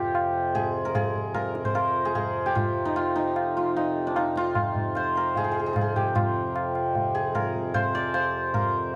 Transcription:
Already playing: harmonium F2 C3, santur F4 G4 A#4 C5 D5 D#5 F5
0.15 tabla na
0.55 santur G#4, tabla tin, tabla ge
0.85 santur A#4
0.95 santur G#4, tabla na, tabla ge
1.15 tabla ge
1.34 santur A#4, tabla na, tabla ge
1.55 tabla te
1.65 santur C5, tabla ge
1.75 santur A#4, tabla na
2.05 santur G#4
2.15 santur G#4, tabla tin, tabla ge
2.46 santur G4
2.55 santur F4, tabla tin, tabla ge
2.85 santur D#4
2.96 santur F4, tabla na
3.16 santur D#4
3.36 tabla na
3.57 santur F4
3.76 santur D#4, tabla tin
4.07 santur D4
4.16 santur D#4, tabla na
4.36 santur F4, tabla ke
4.55 tabla na, tabla ge
4.76 tabla ge
4.95 santur C5, tabla na
5.16 santur A#4, tabla na
5.36 santur G#4, tabla tin, tabla ge
5.44 santur G#4
5.51 santur G#4
5.59 santur G#4
5.66 santur G#4
5.73 santur G#4, tabla na, tabla ge
5.81 santur G#4
5.96 santur G4, tabla ge
6.15 harmonium F2 C3, santur F4, tabla na, tabla ge
6.56 tabla na
6.75 tabla na
6.95 tabla tin, tabla ge
7.15 santur G#4
7.35 santur A#4, tabla na, tabla ge
7.55 tabla ge
7.74 santur C5, tabla na, tabla ge
7.95 santur D5
8.14 santur C5, tabla na
8.54 santur A#4, tabla tin, tabla ge

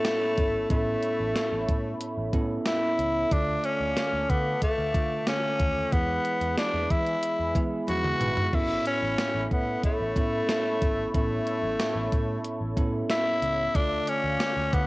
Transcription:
Already playing: tine electric piano A2 B3 C#4 E4 A4, tenor saxophone A3, analog synth pad A4 C#5 E5 B5
0.05 snare, closed hi-hat
0.38 picked electric bass G#1, kick, closed hi-hat
0.69 picked electric bass A1, tine electric piano A2 B3 C#4 E4 A4, tenor saxophone A3, kick, closed hi-hat
1.03 closed hi-hat
1.20 picked electric bass A1
1.36 snare, closed hi-hat
1.52 picked electric bass A1
1.68 picked electric bass A2, kick, closed hi-hat
2.01 closed hi-hat
2.17 picked electric bass A1
2.33 picked electric bass A2, tine electric piano B3 C#4 E4 A4, kick, closed hi-hat
2.66 tenor saxophone E4, snare, closed hi-hat
2.99 picked electric bass C#2, closed hi-hat
3.31 picked electric bass D2, tine electric piano D3 A3 F4 A4, tenor saxophone D4, analog synth pad A4 F5 D6, kick, closed hi-hat
3.64 tenor saxophone C#4, closed hi-hat
3.80 picked electric bass D2
3.97 snare, closed hi-hat
4.13 picked electric bass D2
4.30 picked electric bass D3, tenor saxophone B3, kick, closed hi-hat
4.62 tenor saxophone A3, kick, closed hi-hat
4.78 picked electric bass D2
4.94 picked electric bass D3, tine electric piano D3 A3 F4 A4, kick, closed hi-hat
5.27 tenor saxophone C#4, snare, closed hi-hat
5.60 picked electric bass D#2, kick, closed hi-hat
5.92 picked electric bass E2, tine electric piano E3 G#3 B3 E4 G#4, tenor saxophone B3, analog synth pad G#4 B4 E5 B5, kick, closed hi-hat
6.25 closed hi-hat
6.41 picked electric bass E2, closed hi-hat
6.58 tenor saxophone D4, snare, closed hi-hat
6.74 picked electric bass E2
6.90 picked electric bass E3, tenor saxophone E4, kick, closed hi-hat
7.07 closed hi-hat
7.23 closed hi-hat
7.39 picked electric bass E2
7.55 picked electric bass E3, tine electric piano G#3 B3 E4 G#4, kick, closed hi-hat
7.88 picked electric bass E2, tenor saxophone F#4, closed hi-hat, high tom
8.04 mid tom
8.21 picked electric bass G#1, closed hi-hat, mid tom
8.37 floor tom
8.53 picked electric bass A1, tine electric piano A2 B3 C#4 E4 A4, tenor saxophone E4, analog synth pad A4 C#5, kick, crash
8.86 tenor saxophone C#4, closed hi-hat
9.03 picked electric bass A1
9.18 snare, closed hi-hat
9.35 picked electric bass A1
9.51 picked electric bass A2, tenor saxophone B3, kick, closed hi-hat
9.84 tenor saxophone A3, kick, closed hi-hat
10.00 picked electric bass A1
10.16 picked electric bass A2, tine electric piano B3 C#4 E4 A4, kick, closed hi-hat
10.49 snare, closed hi-hat
10.82 picked electric bass G#1, kick, closed hi-hat
11.14 picked electric bass A1, tine electric piano A2 B3 C#4 E4 A4, tenor saxophone A3, kick, closed hi-hat
11.47 closed hi-hat
11.63 picked electric bass A1
11.80 snare, closed hi-hat
11.95 picked electric bass A1
12.12 picked electric bass A2, kick, closed hi-hat
12.44 closed hi-hat
12.61 picked electric bass A1
12.77 picked electric bass A2, tine electric piano B3 C#4 E4 A4, kick, closed hi-hat
13.10 tenor saxophone E4, snare, closed hi-hat
13.42 picked electric bass C#2, closed hi-hat
13.74 picked electric bass D2, tine electric piano D3 A3 F4 A4, tenor saxophone D4, analog synth pad A4 F5 D6, kick, closed hi-hat
14.07 tenor saxophone C#4, closed hi-hat
14.24 picked electric bass D2
14.40 snare, closed hi-hat
14.57 picked electric bass D2
14.73 picked electric bass D3, tenor saxophone B3, kick, closed hi-hat

